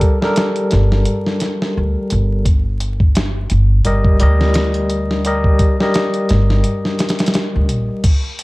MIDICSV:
0, 0, Header, 1, 4, 480
1, 0, Start_track
1, 0, Tempo, 697674
1, 1692, Time_signature, 4, 2, 24, 8
1, 5801, End_track
2, 0, Start_track
2, 0, Title_t, "Tine electric piano"
2, 0, Program_c, 0, 4
2, 0, Note_on_c, 0, 55, 84
2, 0, Note_on_c, 0, 67, 81
2, 0, Note_on_c, 0, 69, 83
2, 0, Note_on_c, 0, 70, 96
2, 117, Note_off_c, 0, 55, 0
2, 120, Note_off_c, 0, 67, 0
2, 122, Note_off_c, 0, 69, 0
2, 122, Note_off_c, 0, 70, 0
2, 149, Note_on_c, 0, 55, 88
2, 156, Note_on_c, 0, 67, 73
2, 162, Note_on_c, 0, 69, 76
2, 169, Note_on_c, 0, 70, 99
2, 1680, Note_off_c, 0, 55, 0
2, 1684, Note_off_c, 0, 67, 0
2, 1686, Note_off_c, 0, 69, 0
2, 1690, Note_off_c, 0, 70, 0
2, 2649, Note_on_c, 0, 55, 88
2, 2654, Note_on_c, 0, 67, 80
2, 2656, Note_on_c, 0, 70, 77
2, 2660, Note_on_c, 0, 75, 90
2, 2866, Note_off_c, 0, 55, 0
2, 2868, Note_off_c, 0, 67, 0
2, 2869, Note_off_c, 0, 70, 0
2, 2871, Note_off_c, 0, 75, 0
2, 2889, Note_on_c, 0, 55, 94
2, 2895, Note_on_c, 0, 67, 77
2, 2902, Note_on_c, 0, 70, 78
2, 2908, Note_on_c, 0, 75, 100
2, 3585, Note_off_c, 0, 55, 0
2, 3588, Note_off_c, 0, 67, 0
2, 3592, Note_off_c, 0, 70, 0
2, 3595, Note_off_c, 0, 75, 0
2, 3617, Note_on_c, 0, 55, 90
2, 3620, Note_on_c, 0, 67, 87
2, 3625, Note_on_c, 0, 70, 83
2, 3628, Note_on_c, 0, 75, 95
2, 3958, Note_off_c, 0, 55, 0
2, 3960, Note_off_c, 0, 67, 0
2, 3962, Note_off_c, 0, 70, 0
2, 3963, Note_off_c, 0, 75, 0
2, 3989, Note_on_c, 0, 55, 80
2, 3995, Note_on_c, 0, 67, 80
2, 4003, Note_on_c, 0, 70, 79
2, 4009, Note_on_c, 0, 75, 96
2, 5520, Note_off_c, 0, 55, 0
2, 5523, Note_off_c, 0, 67, 0
2, 5527, Note_off_c, 0, 70, 0
2, 5530, Note_off_c, 0, 75, 0
2, 5801, End_track
3, 0, Start_track
3, 0, Title_t, "Upright bass"
3, 0, Program_c, 1, 32
3, 502, Note_on_c, 1, 31, 90
3, 712, Note_off_c, 1, 31, 0
3, 1220, Note_on_c, 1, 38, 81
3, 1336, Note_off_c, 1, 38, 0
3, 1460, Note_on_c, 1, 31, 84
3, 2396, Note_off_c, 1, 31, 0
3, 2418, Note_on_c, 1, 31, 94
3, 2630, Note_off_c, 1, 31, 0
3, 2655, Note_on_c, 1, 31, 71
3, 2868, Note_off_c, 1, 31, 0
3, 2898, Note_on_c, 1, 38, 85
3, 3835, Note_off_c, 1, 38, 0
3, 4338, Note_on_c, 1, 31, 92
3, 4550, Note_off_c, 1, 31, 0
3, 5198, Note_on_c, 1, 38, 88
3, 5304, Note_off_c, 1, 38, 0
3, 5304, Note_on_c, 1, 34, 92
3, 5418, Note_off_c, 1, 34, 0
3, 5801, End_track
4, 0, Start_track
4, 0, Title_t, "Drums"
4, 9, Note_on_c, 9, 42, 64
4, 10, Note_on_c, 9, 36, 93
4, 77, Note_off_c, 9, 42, 0
4, 78, Note_off_c, 9, 36, 0
4, 154, Note_on_c, 9, 38, 56
4, 223, Note_off_c, 9, 38, 0
4, 248, Note_on_c, 9, 42, 75
4, 258, Note_on_c, 9, 38, 97
4, 317, Note_off_c, 9, 42, 0
4, 327, Note_off_c, 9, 38, 0
4, 384, Note_on_c, 9, 42, 43
4, 453, Note_off_c, 9, 42, 0
4, 486, Note_on_c, 9, 42, 64
4, 496, Note_on_c, 9, 38, 48
4, 555, Note_off_c, 9, 42, 0
4, 565, Note_off_c, 9, 38, 0
4, 632, Note_on_c, 9, 38, 53
4, 701, Note_off_c, 9, 38, 0
4, 725, Note_on_c, 9, 42, 86
4, 794, Note_off_c, 9, 42, 0
4, 870, Note_on_c, 9, 38, 38
4, 939, Note_off_c, 9, 38, 0
4, 965, Note_on_c, 9, 42, 65
4, 975, Note_on_c, 9, 38, 42
4, 1034, Note_off_c, 9, 42, 0
4, 1043, Note_off_c, 9, 38, 0
4, 1115, Note_on_c, 9, 38, 53
4, 1183, Note_off_c, 9, 38, 0
4, 1447, Note_on_c, 9, 42, 70
4, 1515, Note_off_c, 9, 42, 0
4, 1688, Note_on_c, 9, 36, 106
4, 1690, Note_on_c, 9, 42, 89
4, 1757, Note_off_c, 9, 36, 0
4, 1759, Note_off_c, 9, 42, 0
4, 1929, Note_on_c, 9, 42, 67
4, 1997, Note_off_c, 9, 42, 0
4, 2064, Note_on_c, 9, 36, 96
4, 2133, Note_off_c, 9, 36, 0
4, 2169, Note_on_c, 9, 42, 76
4, 2179, Note_on_c, 9, 38, 109
4, 2238, Note_off_c, 9, 42, 0
4, 2248, Note_off_c, 9, 38, 0
4, 2406, Note_on_c, 9, 42, 67
4, 2475, Note_off_c, 9, 42, 0
4, 2646, Note_on_c, 9, 42, 88
4, 2715, Note_off_c, 9, 42, 0
4, 2783, Note_on_c, 9, 36, 97
4, 2852, Note_off_c, 9, 36, 0
4, 2887, Note_on_c, 9, 42, 68
4, 2956, Note_off_c, 9, 42, 0
4, 3032, Note_on_c, 9, 38, 56
4, 3101, Note_off_c, 9, 38, 0
4, 3124, Note_on_c, 9, 42, 81
4, 3134, Note_on_c, 9, 38, 108
4, 3193, Note_off_c, 9, 42, 0
4, 3203, Note_off_c, 9, 38, 0
4, 3262, Note_on_c, 9, 42, 44
4, 3331, Note_off_c, 9, 42, 0
4, 3368, Note_on_c, 9, 42, 67
4, 3437, Note_off_c, 9, 42, 0
4, 3515, Note_on_c, 9, 38, 45
4, 3583, Note_off_c, 9, 38, 0
4, 3610, Note_on_c, 9, 42, 87
4, 3679, Note_off_c, 9, 42, 0
4, 3745, Note_on_c, 9, 36, 88
4, 3813, Note_off_c, 9, 36, 0
4, 3848, Note_on_c, 9, 42, 66
4, 3849, Note_on_c, 9, 36, 93
4, 3916, Note_off_c, 9, 42, 0
4, 3918, Note_off_c, 9, 36, 0
4, 3994, Note_on_c, 9, 38, 58
4, 4062, Note_off_c, 9, 38, 0
4, 4088, Note_on_c, 9, 42, 78
4, 4097, Note_on_c, 9, 38, 110
4, 4156, Note_off_c, 9, 42, 0
4, 4166, Note_off_c, 9, 38, 0
4, 4222, Note_on_c, 9, 42, 39
4, 4291, Note_off_c, 9, 42, 0
4, 4328, Note_on_c, 9, 42, 63
4, 4338, Note_on_c, 9, 38, 51
4, 4397, Note_off_c, 9, 42, 0
4, 4407, Note_off_c, 9, 38, 0
4, 4474, Note_on_c, 9, 38, 52
4, 4543, Note_off_c, 9, 38, 0
4, 4567, Note_on_c, 9, 42, 77
4, 4636, Note_off_c, 9, 42, 0
4, 4714, Note_on_c, 9, 38, 40
4, 4783, Note_off_c, 9, 38, 0
4, 4809, Note_on_c, 9, 42, 67
4, 4818, Note_on_c, 9, 38, 86
4, 4876, Note_off_c, 9, 42, 0
4, 4876, Note_on_c, 9, 42, 68
4, 4886, Note_off_c, 9, 38, 0
4, 4886, Note_on_c, 9, 38, 89
4, 4945, Note_off_c, 9, 42, 0
4, 4946, Note_on_c, 9, 42, 66
4, 4955, Note_off_c, 9, 38, 0
4, 4955, Note_on_c, 9, 38, 93
4, 4998, Note_off_c, 9, 42, 0
4, 4998, Note_on_c, 9, 42, 69
4, 5007, Note_off_c, 9, 38, 0
4, 5007, Note_on_c, 9, 38, 92
4, 5048, Note_off_c, 9, 42, 0
4, 5048, Note_on_c, 9, 42, 84
4, 5058, Note_off_c, 9, 38, 0
4, 5058, Note_on_c, 9, 38, 107
4, 5117, Note_off_c, 9, 42, 0
4, 5126, Note_off_c, 9, 38, 0
4, 5290, Note_on_c, 9, 42, 66
4, 5359, Note_off_c, 9, 42, 0
4, 5530, Note_on_c, 9, 42, 94
4, 5530, Note_on_c, 9, 49, 93
4, 5531, Note_on_c, 9, 36, 114
4, 5599, Note_off_c, 9, 36, 0
4, 5599, Note_off_c, 9, 42, 0
4, 5599, Note_off_c, 9, 49, 0
4, 5771, Note_on_c, 9, 42, 68
4, 5801, Note_off_c, 9, 42, 0
4, 5801, End_track
0, 0, End_of_file